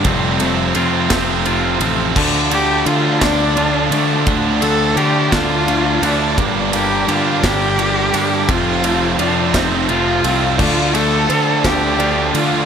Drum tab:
CC |------|x-----|------|------|
RD |xxxxxx|-xxxxx|xxxxxx|xxxxxx|
SD |---o--|---o--|---o--|---o--|
BD |o--o--|o--o--|o--o--|o--o--|

CC |------|x-----|
RD |xxxxxx|-xxxxx|
SD |---o--|---o--|
BD |o--o--|o--o--|